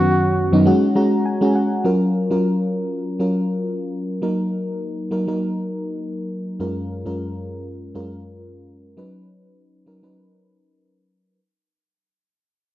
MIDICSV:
0, 0, Header, 1, 3, 480
1, 0, Start_track
1, 0, Key_signature, 6, "major"
1, 0, Tempo, 594059
1, 1492, Time_signature, 4, 2, 24, 8
1, 10295, End_track
2, 0, Start_track
2, 0, Title_t, "Muted trumpet"
2, 0, Program_c, 0, 59
2, 0, Note_on_c, 0, 66, 94
2, 504, Note_off_c, 0, 66, 0
2, 10295, End_track
3, 0, Start_track
3, 0, Title_t, "FM electric piano"
3, 0, Program_c, 1, 5
3, 0, Control_c, 1, 64, 127
3, 0, Note_on_c, 1, 42, 72
3, 0, Note_on_c, 1, 51, 71
3, 0, Note_on_c, 1, 54, 66
3, 0, Note_on_c, 1, 59, 64
3, 0, Note_on_c, 1, 61, 68
3, 0, Note_on_c, 1, 66, 82
3, 296, Note_off_c, 1, 42, 0
3, 297, Note_off_c, 1, 51, 0
3, 298, Note_off_c, 1, 54, 0
3, 299, Note_off_c, 1, 59, 0
3, 300, Note_off_c, 1, 61, 0
3, 301, Note_off_c, 1, 66, 0
3, 421, Note_on_c, 1, 42, 94
3, 424, Note_on_c, 1, 51, 82
3, 425, Note_on_c, 1, 54, 82
3, 427, Note_on_c, 1, 59, 84
3, 429, Note_on_c, 1, 61, 84
3, 431, Note_on_c, 1, 63, 104
3, 524, Note_off_c, 1, 61, 0
3, 529, Note_on_c, 1, 56, 97
3, 531, Note_off_c, 1, 42, 0
3, 532, Note_off_c, 1, 51, 0
3, 533, Note_off_c, 1, 54, 0
3, 534, Note_off_c, 1, 59, 0
3, 534, Note_on_c, 1, 61, 93
3, 536, Note_off_c, 1, 63, 0
3, 539, Note_on_c, 1, 66, 112
3, 544, Control_c, 1, 64, 0
3, 703, Control_c, 1, 64, 127
3, 728, Note_off_c, 1, 56, 0
3, 730, Note_off_c, 1, 61, 0
3, 733, Note_off_c, 1, 66, 0
3, 771, Note_on_c, 1, 56, 89
3, 775, Note_on_c, 1, 61, 81
3, 775, Note_on_c, 1, 82, 72
3, 780, Note_on_c, 1, 66, 100
3, 997, Note_off_c, 1, 82, 0
3, 1014, Note_on_c, 1, 80, 76
3, 1048, Note_off_c, 1, 56, 0
3, 1050, Note_off_c, 1, 61, 0
3, 1053, Note_off_c, 1, 66, 0
3, 1141, Note_on_c, 1, 56, 90
3, 1145, Note_on_c, 1, 61, 82
3, 1150, Note_on_c, 1, 66, 97
3, 1236, Note_off_c, 1, 80, 0
3, 1255, Note_on_c, 1, 78, 72
3, 1413, Note_off_c, 1, 56, 0
3, 1415, Note_off_c, 1, 61, 0
3, 1417, Note_off_c, 1, 66, 0
3, 1477, Note_off_c, 1, 78, 0
3, 1489, Note_on_c, 1, 54, 80
3, 1493, Note_on_c, 1, 61, 74
3, 1496, Note_on_c, 1, 65, 73
3, 1499, Note_on_c, 1, 70, 89
3, 1502, Control_c, 1, 64, 0
3, 1638, Control_c, 1, 64, 127
3, 1768, Note_off_c, 1, 54, 0
3, 1769, Note_off_c, 1, 61, 0
3, 1771, Note_off_c, 1, 65, 0
3, 1773, Note_off_c, 1, 70, 0
3, 1862, Note_on_c, 1, 54, 80
3, 1865, Note_on_c, 1, 61, 72
3, 1868, Note_on_c, 1, 65, 68
3, 1871, Note_on_c, 1, 70, 85
3, 2403, Note_off_c, 1, 54, 0
3, 2405, Note_off_c, 1, 61, 0
3, 2406, Note_off_c, 1, 65, 0
3, 2408, Note_off_c, 1, 70, 0
3, 2581, Note_on_c, 1, 54, 79
3, 2584, Note_on_c, 1, 61, 74
3, 2587, Note_on_c, 1, 65, 71
3, 2591, Note_on_c, 1, 70, 81
3, 3212, Note_off_c, 1, 54, 0
3, 3214, Note_off_c, 1, 61, 0
3, 3215, Note_off_c, 1, 65, 0
3, 3217, Note_off_c, 1, 70, 0
3, 3408, Note_on_c, 1, 54, 80
3, 3412, Note_on_c, 1, 58, 75
3, 3414, Note_on_c, 1, 63, 70
3, 3417, Note_on_c, 1, 70, 90
3, 3422, Control_c, 1, 64, 0
3, 3582, Control_c, 1, 64, 127
3, 3964, Note_off_c, 1, 54, 0
3, 3966, Note_off_c, 1, 58, 0
3, 3967, Note_off_c, 1, 63, 0
3, 3968, Note_off_c, 1, 70, 0
3, 4127, Note_on_c, 1, 54, 79
3, 4130, Note_on_c, 1, 58, 73
3, 4134, Note_on_c, 1, 63, 74
3, 4137, Note_on_c, 1, 70, 90
3, 4230, Note_off_c, 1, 54, 0
3, 4232, Note_off_c, 1, 58, 0
3, 4233, Note_off_c, 1, 63, 0
3, 4235, Note_off_c, 1, 70, 0
3, 4259, Note_on_c, 1, 54, 83
3, 4263, Note_on_c, 1, 58, 71
3, 4266, Note_on_c, 1, 63, 76
3, 4269, Note_on_c, 1, 70, 92
3, 4990, Note_off_c, 1, 54, 0
3, 4992, Note_off_c, 1, 58, 0
3, 4993, Note_off_c, 1, 63, 0
3, 4995, Note_off_c, 1, 70, 0
3, 5328, Note_on_c, 1, 42, 82
3, 5330, Note_on_c, 1, 56, 73
3, 5333, Note_on_c, 1, 61, 74
3, 5335, Note_on_c, 1, 65, 70
3, 5337, Note_on_c, 1, 70, 84
3, 5345, Control_c, 1, 64, 0
3, 5499, Control_c, 1, 64, 127
3, 5607, Note_off_c, 1, 42, 0
3, 5608, Note_off_c, 1, 56, 0
3, 5610, Note_off_c, 1, 61, 0
3, 5610, Note_off_c, 1, 65, 0
3, 5611, Note_off_c, 1, 70, 0
3, 5699, Note_on_c, 1, 42, 76
3, 5702, Note_on_c, 1, 56, 71
3, 5704, Note_on_c, 1, 61, 72
3, 5707, Note_on_c, 1, 65, 65
3, 5709, Note_on_c, 1, 70, 84
3, 6242, Note_off_c, 1, 42, 0
3, 6243, Note_off_c, 1, 56, 0
3, 6244, Note_off_c, 1, 61, 0
3, 6246, Note_off_c, 1, 65, 0
3, 6247, Note_off_c, 1, 70, 0
3, 6420, Note_on_c, 1, 42, 72
3, 6422, Note_on_c, 1, 56, 71
3, 6424, Note_on_c, 1, 61, 73
3, 6426, Note_on_c, 1, 65, 75
3, 6428, Note_on_c, 1, 70, 81
3, 7052, Note_off_c, 1, 42, 0
3, 7053, Note_off_c, 1, 56, 0
3, 7054, Note_off_c, 1, 61, 0
3, 7055, Note_off_c, 1, 65, 0
3, 7056, Note_off_c, 1, 70, 0
3, 7247, Note_on_c, 1, 54, 82
3, 7251, Note_on_c, 1, 61, 74
3, 7254, Note_on_c, 1, 63, 71
3, 7257, Note_on_c, 1, 71, 86
3, 7261, Control_c, 1, 64, 0
3, 7383, Control_c, 1, 64, 127
3, 7803, Note_off_c, 1, 54, 0
3, 7805, Note_off_c, 1, 61, 0
3, 7807, Note_off_c, 1, 63, 0
3, 7808, Note_off_c, 1, 71, 0
3, 7969, Note_on_c, 1, 54, 75
3, 7973, Note_on_c, 1, 61, 66
3, 7976, Note_on_c, 1, 63, 70
3, 7980, Note_on_c, 1, 70, 80
3, 8071, Note_off_c, 1, 54, 0
3, 8073, Note_off_c, 1, 61, 0
3, 8075, Note_off_c, 1, 63, 0
3, 8076, Note_off_c, 1, 70, 0
3, 8102, Note_on_c, 1, 54, 78
3, 8105, Note_on_c, 1, 61, 73
3, 8108, Note_on_c, 1, 63, 74
3, 8111, Note_on_c, 1, 71, 87
3, 8831, Note_off_c, 1, 54, 0
3, 8833, Note_off_c, 1, 61, 0
3, 8835, Note_off_c, 1, 63, 0
3, 8836, Note_off_c, 1, 71, 0
3, 9183, Control_c, 1, 64, 0
3, 10295, End_track
0, 0, End_of_file